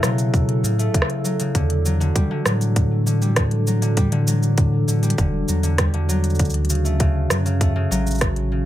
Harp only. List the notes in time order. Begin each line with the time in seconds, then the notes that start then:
Already playing: C#3 A3
0.03 F#3
0.64 C#3
0.79 A3
0.94 C#3
1.24 F#3
1.40 C#3
1.55 D3
1.85 F#3
2.00 D3
2.16 G3
2.31 D3
2.46 F#3
3.06 D3
3.22 G3
3.37 D3
3.67 F#3
3.82 D3
3.97 G3
4.12 D3
4.27 F#3
4.88 D3
5.03 G3
5.18 D3
5.48 F#3
5.63 D3
5.78 G3
5.94 D3
6.09 F#3
6.70 C#3
6.85 A3
6.99 C#3
7.30 F#3
7.45 C#3
7.61 A3
7.76 C#3
7.91 F#3
8.52 C#3